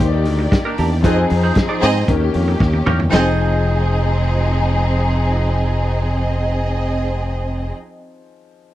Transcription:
Already playing: G4
0.00 D#2 D#3 A#3 D#4 G4 C5 D5, muted clean electric guitar stroke, kick, closed hi-hat
0.08 D5
0.13 muted clean electric guitar stroke
0.25 D2, open hi-hat
0.39 muted clean electric guitar stroke
0.52 muted clean electric guitar stroke, kick, snare, closed hi-hat
0.65 D4 G4 A#4
0.78 E2 D4 G4 A#4, open hi-hat
0.91 muted clean electric guitar stroke
1.02 F2 F3 C4 D#4 G#4 C5 D#5, kick, closed hi-hat
1.17 muted clean electric guitar stroke
1.30 F2, muted clean electric guitar stroke, open hi-hat
1.43 D#4 G#4 C5
1.55 muted clean electric guitar stroke, kick, snare, closed hi-hat
1.69 D#4 G#4 D5
1.82 G#2 C4 D#4 G#4 C5 D#5, open hi-hat
1.95 muted clean electric guitar stroke
2.07 D#2 D#3 A#3 C#4 G4, muted clean electric guitar stroke, kick, closed hi-hat
2.22 muted clean electric guitar stroke
2.34 F2, open hi-hat
2.48 muted clean electric guitar stroke
2.60 D#2, muted clean electric guitar stroke, kick, snare
2.73 muted clean electric guitar stroke, high tom
2.86 E2 C#4 G4 A#4, mid tom
3.00 muted clean electric guitar stroke, floor tom
3.10 F1 F3 C4 D#4 G#4 D#5, splash
3.14 G#4 C5, snare

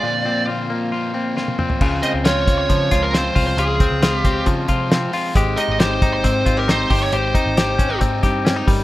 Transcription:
Already playing: F4 D5
0.04 A#2 D3 F3 A#3 C4 F4
0.25 F3 A#3 C4 F4
0.48 A#2 D3 F3 A#3 C4 F4
0.70 F3 A#3 C4 F4
0.92 F3 A#3 C4 F4
1.14 F3 A#3 C4 F4
1.35 A#2 D3 F3 A#3 C4 F4, snare
1.48 high tom
1.58 F3 A#3 C4 F4, mid tom
1.70 floor tom
1.81 C#2 C#3 F3 G#3 C4 F4, kick, crash
2.03 G#3 C4 F4 D#5, closed hi-hat
2.14 C#2
2.25 F3 G#3 C4 F4 C#5, snare, closed hi-hat
2.47 G#3 C4 F4, kick, closed hi-hat
2.58 C#5
2.69 C#3 F3 G#3 C4 F4, kick, closed hi-hat
2.91 C#2 G#3 C4 F4, kick, snare, closed hi-hat
3.03 A#4
3.12 F3 G#3 C4 F4 C5, snare, closed hi-hat
3.36 C2 G#3 C4 F4, kick, open hi-hat
3.47 C5
3.57 C#2 C#3 F3 G#3 C4 F4 G#4, closed hi-hat
3.80 G#3 C4 F4, kick, closed hi-hat
3.91 C#2
4.01 F3 G#3 C4 F4, snare, closed hi-hat
4.16 G4
4.24 G#3 C4 F4, kick, closed hi-hat
4.46 C#3 F3 G#3 C4 F4, kick, closed hi-hat
4.68 C3 G#3 C4 F4, kick, closed hi-hat
4.88 F3 G#3 C4 F4, snare, closed hi-hat
5.12 G#3 C4 F4, open hi-hat
5.34 G#1 G#3 C4 D#4 G4, kick, closed hi-hat
5.57 C4 D#4 G4 D#5, closed hi-hat
5.68 G#1
5.79 G#3 C4 D#4 G4 C5, snare, closed hi-hat
6.01 C4 D#4 G4, kick, closed hi-hat
6.14 C5
6.24 G#2 G#3 C4 D#4 G4, kick, closed hi-hat
6.46 G#1 C4 D#4 F4 G4, kick, closed hi-hat
6.57 G4 A#4
6.67 G#3 C4 D#4 G4 C5, snare, closed hi-hat
6.90 G1 C4 D#4 G4, kick, open hi-hat
7.03 C#5
7.12 G#1 G#3 C4 D#4 G4 C5, closed hi-hat
7.34 C4 D#4 G4, kick, closed hi-hat
7.46 G#1
7.57 G#3 C4 D#4 G4, snare, closed hi-hat
7.78 C4 C#4 D#4 G4, kick, closed hi-hat
7.90 D#4
8.01 G#2 G#3 C4 D#4 G4, kick, closed hi-hat
8.23 G2 C4 D#4 G4, kick, snare, closed hi-hat
8.45 G#3 C4 C#4 D#4 G4, snare, closed hi-hat
8.56 D#4
8.67 G1 G3 C#4 D#4 A#4, kick, open hi-hat

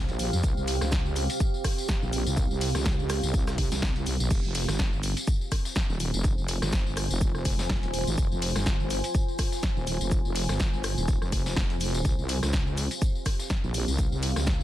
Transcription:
Already playing: C4 G4 F5
0.09 A#1, closed hi-hat, tambourine
0.19 open hi-hat, shaker
0.33 F2, tambourine
0.44 C2, kick, tambourine, shaker
0.57 C2, tambourine
0.68 open hi-hat, shaker
0.81 C#2, cross-stick, snare, tambourine
0.92 kick, snare, tambourine, shaker
1.06 tambourine
1.16 open hi-hat, shaker
1.30 closed hi-hat, tambourine
1.40 kick, tambourine, shaker
1.54 tambourine
1.64 kick, cross-stick, open hi-hat, shaker
1.78 tambourine
1.89 kick, snare, shaker
2.02 A#1, tambourine
2.13 open hi-hat, shaker
2.26 C2, tambourine
2.37 kick, tambourine, shaker
2.51 C2, tambourine
2.61 open hi-hat, shaker
2.75 C#2, cross-stick, snare, tambourine
2.85 kick, snare, shaker
2.99 tambourine
3.10 cross-stick, snare, open hi-hat, shaker
3.23 C2, tambourine
3.34 kick, tambourine, shaker
3.47 cross-stick, snare, tambourine, shaker
3.58 kick, open hi-hat
3.72 C2, snare, tambourine, shaker
3.82 kick, snare, open hi-hat
3.96 closed hi-hat, tambourine
4.06 C2, open hi-hat, shaker
4.20 A#1, tambourine
4.31 F1 F4 C5 G#5, kick, tambourine, crash, shaker
4.44 F1, tambourine
4.55 open hi-hat, shaker
4.68 G1, cross-stick, snare, tambourine
4.79 kick, snare, shaker
4.93 tambourine
5.03 open hi-hat, shaker
5.17 closed hi-hat, tambourine
5.27 kick, tambourine, shaker
5.41 tambourine
5.52 kick, cross-stick, open hi-hat, shaker
5.65 snare, tambourine
5.76 kick, snare, tambourine, shaker
5.89 D#1, tambourine
6.00 open hi-hat, shaker
6.14 F1, tambourine
6.24 kick, tambourine, shaker
6.38 F1, tambourine
6.48 open hi-hat, shaker
6.62 G1, cross-stick, snare, tambourine
6.73 kick, snare, shaker
6.86 tambourine
6.97 cross-stick, open hi-hat, shaker
7.10 F1, tambourine
7.21 kick, tambourine, shaker
7.35 cross-stick, tambourine
7.45 F1, kick, open hi-hat, shaker
7.59 snare, tambourine
7.69 kick, snare, open hi-hat
7.83 D#1, closed hi-hat, tambourine
7.94 open hi-hat, shaker
8.07 G#1, tambourine
8.18 F1, kick, tambourine, shaker
8.31 F1, tambourine
8.42 open hi-hat, shaker
8.56 G1, cross-stick, snare, tambourine
8.66 kick, snare, tambourine, shaker
8.80 tambourine
8.90 open hi-hat, shaker
9.04 closed hi-hat, tambourine
9.15 kick, tambourine, shaker
9.28 tambourine
9.39 kick, cross-stick, open hi-hat, shaker
9.52 snare, tambourine
9.63 kick, snare, shaker
9.76 D#1, tambourine
9.87 open hi-hat, shaker
10.01 F1, tambourine
10.11 kick, tambourine, shaker
10.25 F1, tambourine
10.36 open hi-hat, shaker
10.49 G1, cross-stick, snare, tambourine
10.60 kick, snare, tambourine, shaker
10.73 tambourine
10.84 cross-stick, open hi-hat, shaker
10.97 D#1, tambourine
11.08 kick, tambourine, shaker
11.22 F1, cross-stick, tambourine
11.32 kick, open hi-hat, shaker
11.46 snare, tambourine
11.56 F1, kick, snare, open hi-hat
11.70 closed hi-hat, tambourine
11.81 open hi-hat, shaker
11.94 tambourine
12.05 C2 C4 G4 F5, kick, tambourine, shaker
12.18 C2, tambourine
12.29 open hi-hat, shaker
12.43 C#2, cross-stick, snare, tambourine
12.53 kick, snare, shaker
12.67 tambourine
12.77 open hi-hat, shaker
12.91 closed hi-hat, tambourine
13.02 kick, tambourine, shaker
13.15 tambourine
13.26 kick, cross-stick, open hi-hat, shaker
13.39 snare, tambourine
13.50 kick, snare, shaker
13.64 A#1, tambourine
13.74 open hi-hat, shaker
13.88 C2, tambourine
13.98 kick, tambourine, shaker
14.12 C2, tambourine
14.23 open hi-hat, shaker
14.36 C#2, cross-stick, snare, tambourine
14.47 kick, snare, shaker

